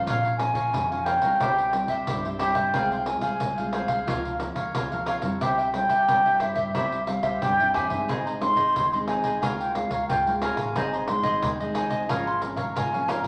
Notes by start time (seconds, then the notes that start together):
Already playing: F3 C#4 F4
0.05 A#2 F4 A#4 C#5 F5, pandeiro
0.10 F5
0.25 A#4 C#5 F5, pandeiro
0.37 F3 C#4 F4 G#5, muted cavaquinho stroke, pandeiro
0.54 A#2 A#4 C#5 F5, pandeiro
0.73 F2 F3, pandeiro
0.91 F3 C#4 F4 A#4 C#5 F5, pandeiro
1.04 F4 A#4 C#5 G5, pandeiro
1.09 F5
1.21 C#2 G3 C4 E4 A#4 C#5 F5, pandeiro
1.40 C2 C3 E4 G4 C5 E5, pandeiro
1.58 pandeiro
1.73 G3 C4 E4, muted cavaquinho stroke, pandeiro
1.88 C2 G4 C5 E5, pandeiro
2.07 C2 G2 E4 G4 C5 E5, pandeiro
2.24 G3 C4 E4 G4 C5 E5, pandeiro
2.38 E4 G4 C5 E5 G5, pandeiro
2.55 G2 G4 C5 E5, pandeiro
2.74 C2 C3 G#3 C4 F4 G#4 C5 F5, pandeiro
2.91 G#4 C5 F5, pandeiro
3.06 G#3 C4 F4 G#5, muted cavaquinho stroke, pandeiro
3.21 C2 G#4 C5 F5 G#5, pandeiro
3.40 C2 C3, pandeiro
3.58 G#3 C4 F4 G#4 C5 F5, pandeiro
3.73 F4 G#4 C5 F5, pandeiro
3.88 C2 G#4 C5 F5, pandeiro
4.07 C#2 C#3 F3 A#3 F4 A#4 C#5 F5, pandeiro
4.25 pandeiro
4.40 F3 A#3 F4, muted cavaquinho stroke, pandeiro
4.55 C#2 A#4 C#5 F5, pandeiro
4.74 C#2 C#3 F4 A#4 C#5 F5, pandeiro
4.92 F3 A#3 F4 A#4 C#5 F5, pandeiro
5.06 F4 A#4 C#5 F5, pandeiro
5.22 F2 G3 C4 E4 A#4 C#5 F5, pandeiro
5.41 C2 C3 E4 G4 C5 E5 G5, pandeiro
5.58 G4 C5 E5, pandeiro
5.73 G3 C4 E4 G5, muted cavaquinho stroke, pandeiro
5.89 C2 G4 C5 E5, pandeiro
6.08 G2, pandeiro
6.25 G3 C4 E4 G4 C5 E5, pandeiro
6.39 E4 G4 C5 E5, pandeiro
6.55 G2 G4 C5 E5, pandeiro
6.74 C2 C3 G3 C4 E4 G4 C5 E5, pandeiro
6.92 pandeiro
7.07 G3 C4 F5, muted cavaquinho stroke, pandeiro
7.23 C2 G4 C5 E5, pandeiro
7.41 C2 G2 E4 G4 C5 E5 G5, pandeiro
7.59 C2 G3 C4 E4 G4 C5 E5, pandeiro
7.74 E2 E4 G4 C5 E5 G#5, pandeiro
7.90 G2 G#3 C4 D#4 G4 C5 E5, pandeiro
8.08 G#1 G#2 D#4 G#4 C5 D#5, pandeiro
8.25 G#4 C5 D#5 A#5, pandeiro
8.40 G#3 C4 D#4 C6, muted cavaquinho stroke, pandeiro
8.56 G#1 G#4 C5 D#5, pandeiro
8.76 D#2 D#3, pandeiro
8.92 G#3 C4 D#4 G#4 C5 D#5 C6, pandeiro
9.06 D#4 G#4 C5 D#5 G#5, pandeiro
9.24 C2 G#4 C5 D#5, pandeiro
9.41 C#2 C#3 G#3 A#3 F4 A#4 C#5 F5 G#5, pandeiro
9.59 G5, pandeiro
9.73 G#3 A#3 F4 F5, muted cavaquinho stroke, pandeiro
9.90 C#2 A#4 C#5 F5, pandeiro
10.08 C#2 G#2 F4 A#4 C#5 G5, pandeiro
10.12 F5
10.27 G#3 A#3 F4 A#4 C#5 F5, pandeiro
10.40 F4 A#4 C#5 F5 G#5, pandeiro
10.57 A1 A#4 C#5 F5, pandeiro
10.76 G#1 G#2 G#3 C4 D#4 G#4 C5 D#5, pandeiro
10.93 G#4 C5 D#5 A#5, pandeiro
11.07 G#3 C4 D#4 C6, muted cavaquinho stroke, pandeiro
11.23 G#1 G#4 C5 D#5, pandeiro
11.42 D#2 D#3, pandeiro
11.60 G#3 C4 D#4 G#4 C5 D#5, pandeiro
11.74 D#4 G#4 C5 D#5 G#5, pandeiro
11.90 D#2 G#4 C5 D#5, pandeiro
12.09 G#1 G#2 F3 A#3 C#4 F4 A#4 C#5 F5 A#5, pandeiro
12.27 C6, pandeiro
12.41 F3 A#3 C#4 A#5, muted cavaquinho stroke, pandeiro
12.56 G#1 A#4 C#5 F5, pandeiro
12.76 G#1 G#2 F4 A#4 C#5 F5 G#5, pandeiro
12.93 F3 A#3 C#4 A#4 C#5 F5, pandeiro
13.08 F4 A#4 C#5 F5 A#5, pandeiro
13.24 G#1 G3 F5, pandeiro